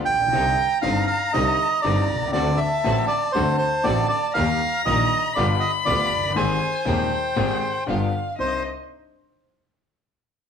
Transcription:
0.05 0.33 A#1 soft
0.05 0.78 G5 loud
0.13 0.20 A1 soft
0.20 0.26 A#1 medium
0.27 0.33 B1 medium
0.27 2.30 A#5 medium
0.32 0.54 C2 medium
0.32 0.55 C2 medium
0.32 0.54 C3 medium
0.32 0.54 D3 medium
0.32 0.54 G3 medium
0.32 0.54 C4 medium
0.32 0.54 D4 medium
0.32 0.54 D#4 medium
0.82 1.04 G1 medium
0.82 1.05 G1 medium
0.82 1.04 G2 medium
0.82 1.04 D3 medium
0.82 1.04 G3 medium
0.82 1.04 C4 medium
0.82 1.05 C4 medium
0.82 1.05 D4 medium
0.82 1.04 D#4 medium
0.82 1.05 D#4 medium
0.82 1.06 F5 loud
1.07 1.31 F5 medium
1.33 1.55 C2 medium
1.33 1.56 C2 medium
1.33 1.55 C3 medium
1.33 1.55 D3 medium
1.33 1.55 G3 medium
1.33 1.55 C4 medium
1.33 1.55 D4 medium
1.33 1.55 D#4 medium
1.33 1.80 D#5 medium
1.82 2.06 G1 medium
1.82 2.06 G2 medium
1.82 2.05 D3 medium
1.82 2.05 G3 medium
1.82 2.05 C4 medium
1.82 2.06 D4 medium
1.82 2.06 D#4 medium
1.82 2.31 D5 medium
2.10 2.35 C2 medium
2.14 2.21 B1 medium
2.21 2.28 C2 medium
2.27 2.34 C#2 medium
2.33 2.55 D2 medium
2.33 2.56 D2 loud
2.33 2.55 D3 medium
2.33 2.55 A3 medium
2.33 2.55 C4 medium
2.33 2.56 C4 medium
2.33 2.56 D4 medium
2.33 2.55 F#4 medium
2.33 2.56 F#4 medium
2.33 2.60 D5 medium
2.33 3.31 A5 loud
2.57 3.05 E5 medium
2.84 3.06 A1 medium
2.84 3.06 A2 medium
2.84 3.06 D3 medium
2.84 3.06 A3 medium
2.84 3.06 C4 medium
2.84 3.06 D4 medium
2.84 3.06 F#4 medium
3.08 3.32 D5 medium
3.32 3.57 D2 loud
3.32 3.57 D3 loud
3.32 3.56 A3 medium
3.32 3.56 C4 medium
3.32 3.56 D4 medium
3.32 3.57 F#4 medium
3.32 3.57 C5 medium
3.32 4.31 A5 loud
3.36 3.57 D2 medium
3.58 3.85 C5 medium
3.84 4.06 A1 medium
3.84 4.07 A1 loud
3.84 4.06 A2 medium
3.84 4.06 D3 medium
3.84 4.06 A3 medium
3.84 4.06 C4 medium
3.84 4.07 C4 medium
3.84 4.07 D4 medium
3.84 4.06 F#4 medium
3.84 4.07 F#4 medium
3.84 4.07 D5 medium
4.09 4.33 D5 medium
4.34 4.57 D#2 medium
4.34 4.57 D#2 loud
4.34 4.57 D#3 medium
4.34 4.57 G3 medium
4.34 4.56 A#3 medium
4.34 4.57 A#3 medium
4.34 4.57 D#4 medium
4.34 4.57 G4 medium
4.34 4.81 F5 loud
4.34 5.36 A#5 loud
4.85 5.07 A#1 loud
4.85 5.07 A#1 medium
4.85 5.07 A#2 medium
4.85 5.07 D#3 medium
4.85 5.07 G3 medium
4.85 5.07 A#3 medium
4.85 5.08 D#4 medium
4.85 5.07 G4 medium
4.85 5.08 G4 medium
4.85 5.32 D#5 medium
5.34 5.57 G1 loud
5.34 5.58 G1 loud
5.34 5.57 G2 loud
5.34 5.57 D3 medium
5.34 5.57 G3 medium
5.34 5.57 B3 medium
5.34 5.57 F4 medium
5.34 5.58 F4 loud
5.34 5.57 G4 loud
5.34 5.47 D5 medium
5.34 6.38 B5 loud
5.60 5.72 D#5 medium
5.85 6.07 D2 medium
5.85 6.08 D2 medium
5.85 6.07 D3 medium
5.85 6.07 G3 medium
5.85 6.07 B3 medium
5.85 6.07 F4 medium
5.85 6.08 F4 medium
5.85 6.08 G4 medium
5.85 6.32 D5 medium
6.12 6.36 F#1 medium
6.16 6.23 F1 soft
6.24 6.30 F#1 medium
6.30 6.36 G1 medium
6.35 6.57 G#1 medium
6.35 6.58 G#1 loud
6.35 6.57 G#2 medium
6.35 6.57 D#3 medium
6.35 6.57 G#3 medium
6.35 6.57 C4 medium
6.35 6.58 C4 medium
6.35 6.57 G4 medium
6.35 6.58 G4 medium
6.35 6.58 G#4 medium
6.35 7.84 C5 medium
6.35 6.88 G#5 loud
6.85 7.07 D#1 medium
6.85 7.07 D#2 medium
6.85 7.07 D#3 medium
6.85 7.07 G#3 medium
6.85 7.07 C4 medium
6.85 7.08 C4 medium
6.85 7.07 G4 medium
6.85 7.08 G4 medium
6.85 7.08 G#4 medium
6.85 7.90 G5 medium
7.36 7.58 G#1 medium
7.36 7.58 G#2 medium
7.36 7.58 D#3 medium
7.36 7.58 G#3 medium
7.36 7.58 C4 medium
7.36 7.58 G4 medium
7.36 7.58 G#4 medium
7.86 8.09 G1 medium
7.86 8.10 G1 medium
7.86 8.09 G2 medium
7.86 8.09 D3 medium
7.86 8.09 G3 medium
7.86 8.09 B3 medium
7.86 8.09 F4 medium
7.86 8.10 F4 medium
7.86 8.10 G4 medium
7.86 8.38 F5 medium
8.38 8.60 C2 medium
8.38 8.60 C4 medium
8.38 8.60 D4 medium
8.38 8.60 D4 soft
8.38 8.60 D#4 medium
8.38 8.60 D#4 soft
8.38 8.60 C5 medium
8.38 8.63 C5 medium
8.38 8.62 D#5 medium

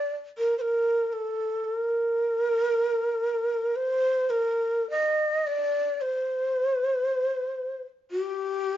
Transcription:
0.00 0.13 D5 medium
0.38 0.57 A#4 medium
0.58 1.14 A#4 medium
0.58 0.62 C5 medium
1.13 1.64 A4 medium
1.64 1.75 A4 medium
1.75 3.77 A#4 medium
3.76 4.31 C5 medium
4.30 4.89 A#4 medium
4.90 5.49 D#5 medium
5.47 6.03 D5 medium
6.01 7.80 C5 medium
8.11 8.77 G4 medium

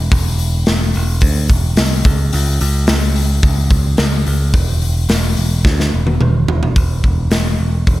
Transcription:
0.12 0.63 E1 loud
0.12 kick loud
0.12 open hi-hat medium
0.38 open hi-hat medium
0.66 0.92 E1 loud
0.66 snare loud
0.66 open hi-hat medium
0.94 1.21 E1 medium
0.94 open hi-hat medium
1.21 1.47 D2 medium
1.21 kick loud
1.21 open hi-hat loud
1.48 1.75 E1 medium
1.48 kick medium
1.48 open hi-hat medium
1.77 2.03 C2 medium
1.77 snare loud
1.77 open hi-hat medium
2.04 2.30 C#2 loud
2.04 kick loud
2.04 open hi-hat medium
2.33 2.59 C#2 loud
2.33 open hi-hat medium
2.60 2.86 C#2 loud
2.60 open hi-hat medium
2.87 3.40 C#2 medium
2.87 snare loud
2.87 open hi-hat medium
3.15 open hi-hat medium
3.43 3.94 C#2 medium
3.43 kick loud
3.43 open hi-hat medium
3.70 kick medium
3.70 open hi-hat medium
3.97 4.24 C#2 loud
3.97 snare loud
3.97 open hi-hat medium
4.26 4.52 C#2 medium
4.26 open hi-hat medium
4.53 5.05 E1 loud
4.53 kick loud
4.53 open hi-hat medium
4.81 open hi-hat medium
5.09 5.34 E1 loud
5.09 snare loud
5.09 open hi-hat medium
5.37 5.63 E1 medium
5.37 open hi-hat medium
5.65 5.90 D2 medium
5.65 kick loud
5.65 snare medium
5.80 snare medium
5.94 6.19 E1 medium
6.07 high tom medium
6.21 6.46 E1 loud
6.21 mid tom medium
6.48 6.74 E1 medium
6.48 floor tom loud
6.63 floor tom medium
6.76 7.01 E1 medium
6.76 kick loud
6.76 open hi-hat medium
7.04 7.28 E1 loud
7.04 kick medium
7.30 7.55 E1 medium
7.30 snare loud
7.30 open hi-hat medium
7.58 7.83 E1 medium
7.87 8.00 E1 medium
7.87 kick loud
7.87 open hi-hat medium

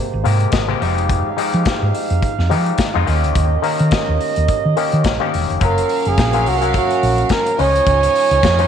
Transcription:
0.00 3.04 G#3 medium
0.00 0.78 A#3 medium
0.00 3.03 G4 medium
0.00 0.78 C5 medium
0.14 0.22 G#1 loud
0.24 0.45 G#2 medium
0.24 0.61 C3 medium
0.24 0.61 G#3 medium
0.24 0.61 A#3 medium
0.24 0.61 G4 medium
0.24 0.51 F5 medium
0.24 open hi-hat medium
0.40 closed hi-hat soft
0.52 0.73 G#1 medium
0.52 0.68 D#5 medium
0.52 kick loud
0.52 snare loud
0.52 closed hi-hat medium
0.68 0.81 C3 loud
0.68 0.81 G#3 medium
0.68 0.81 A#3 medium
0.68 0.81 G4 loud
0.68 1.07 C5 medium
0.80 1.21 F1 medium
0.80 1.29 F3 medium
0.80 0.88 G3 medium
0.80 3.05 D#4 medium
0.80 1.30 D#4 medium
0.80 1.30 G4 loud
0.80 3.05 F5 medium
0.80 open hi-hat soft
0.87 1.33 G#3 medium
0.98 closed hi-hat soft
1.09 kick loud
1.09 closed hi-hat medium
1.37 2.33 F3 medium
1.37 2.33 G#3 medium
1.37 2.33 D#4 medium
1.37 2.34 G4 medium
1.37 open hi-hat medium
1.53 1.63 F3 loud
1.53 closed hi-hat soft
1.65 kick loud
1.65 snare loud
1.65 closed hi-hat medium
1.82 1.91 G#2 medium
1.95 open hi-hat medium
2.10 2.19 F2 medium
2.10 closed hi-hat soft
2.22 kick loud
2.22 closed hi-hat medium
2.39 2.53 F2 loud
2.39 snare soft
2.50 2.87 F3 medium
2.50 2.71 F3 loud
2.50 2.87 G#3 medium
2.50 2.87 D#4 medium
2.50 2.87 G4 medium
2.50 open hi-hat medium
2.66 closed hi-hat soft
2.78 kick loud
2.78 snare loud
2.78 closed hi-hat medium
2.94 3.04 F2 medium
2.94 3.07 F3 loud
2.94 3.07 G#3 medium
2.94 3.08 D#4 medium
2.94 3.06 F4 loud
3.06 3.24 D#2 medium
3.06 3.55 D#3 medium
3.06 3.55 A#3 medium
3.06 3.56 C#4 medium
3.06 5.44 C#4 medium
3.06 3.15 F4 medium
3.06 5.44 G4 medium
3.06 5.44 A#4 medium
3.06 5.44 D#5 loud
3.06 open hi-hat medium
3.14 3.59 G4 medium
3.24 3.33 D2 medium
3.24 closed hi-hat soft
3.35 3.56 D#2 medium
3.35 kick loud
3.35 closed hi-hat medium
3.62 4.59 D#3 medium
3.62 4.59 A#3 medium
3.62 4.59 C#4 medium
3.62 4.60 A#4 medium
3.62 open hi-hat medium
3.79 3.89 D#3 medium
3.79 closed hi-hat soft
3.91 kick loud
3.91 snare loud
3.91 closed hi-hat medium
4.09 4.17 D#2 medium
4.21 open hi-hat medium
4.36 4.46 D#2 loud
4.36 closed hi-hat soft
4.48 kick loud
4.48 closed hi-hat medium
4.66 4.74 D#3 medium
4.77 5.13 D#3 medium
4.77 5.13 A#3 medium
4.77 5.13 C#4 medium
4.77 5.14 G4 medium
4.77 open hi-hat medium
4.92 5.02 D#3 medium
4.92 closed hi-hat soft
5.04 5.16 A#1 medium
5.04 kick loud
5.04 snare loud
5.04 closed hi-hat medium
5.20 5.61 D#3 loud
5.20 5.61 A#3 loud
5.20 5.60 C#4 medium
5.20 5.62 G4 loud
5.34 5.45 E1 medium
5.34 open hi-hat medium
5.50 5.58 F1 medium
5.50 closed hi-hat soft
5.60 5.81 F#1 medium
5.60 6.20 F#3 medium
5.60 7.57 F#3 medium
5.60 7.57 A#3 medium
5.60 6.20 C#4 medium
5.60 7.55 C#4 medium
5.60 8.68 C#4 medium
5.60 6.21 F4 medium
5.60 7.55 A#4 medium
5.60 6.21 A#4 medium
5.60 7.55 F5 loud
5.60 7.57 F5 medium
5.60 kick loud
5.60 closed hi-hat medium
5.65 6.09 A#4 medium
5.78 closed hi-hat medium
5.89 open hi-hat medium
6.05 6.15 F#1 medium
6.05 6.50 G#4 medium
6.05 closed hi-hat soft
6.18 6.47 A#1 medium
6.18 kick loud
6.18 snare loud
6.18 closed hi-hat medium
6.33 6.56 F#3 medium
6.33 6.57 C#4 medium
6.33 6.57 F4 medium
6.33 6.57 A#4 medium
6.33 closed hi-hat soft
6.46 6.77 C2 medium
6.46 6.75 F#4 medium
6.46 open hi-hat medium
6.61 7.55 F#3 medium
6.61 7.55 C#4 medium
6.61 7.55 A#4 medium
6.61 7.55 F5 medium
6.61 closed hi-hat soft
6.74 7.34 F#4 medium
6.74 kick loud
6.74 closed hi-hat medium
6.91 closed hi-hat soft
7.03 7.22 A#1 medium
7.03 open hi-hat medium
7.18 closed hi-hat soft
7.29 7.62 A#4 medium
7.29 kick loud
7.29 snare loud
7.29 closed hi-hat medium
7.46 closed hi-hat soft
7.58 7.79 C#2 medium
7.58 8.41 F3 medium
7.58 8.68 F3 medium
7.58 8.68 G#3 medium
7.58 8.41 C#4 medium
7.58 8.68 D#4 medium
7.58 8.42 D#4 medium
7.58 8.68 F4 medium
7.58 8.42 C#5 medium
7.58 8.68 C#5 loud
7.58 8.68 D#5 medium
7.58 8.68 G#5 medium
7.58 open hi-hat soft
7.76 closed hi-hat soft
7.86 8.07 C#2 medium
7.86 kick loud
7.86 closed hi-hat medium
8.03 closed hi-hat medium
8.15 open hi-hat medium
8.31 8.40 C#2 medium
8.31 closed hi-hat soft
8.43 8.63 F2 medium
8.43 kick loud
8.43 snare loud
8.43 closed hi-hat medium
8.58 8.68 F3 medium
8.58 8.68 C#4 medium
8.58 8.68 D#4 medium
8.58 8.68 C5 medium
8.58 closed hi-hat soft

